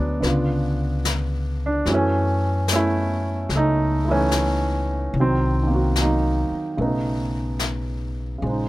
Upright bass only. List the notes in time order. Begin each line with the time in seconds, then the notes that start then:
Already playing: D2
0.22 C#2
1.86 F#2
3.49 C#2
5.14 C2
6.51 muted upright bass stroke
6.78 B1
8.42 A#1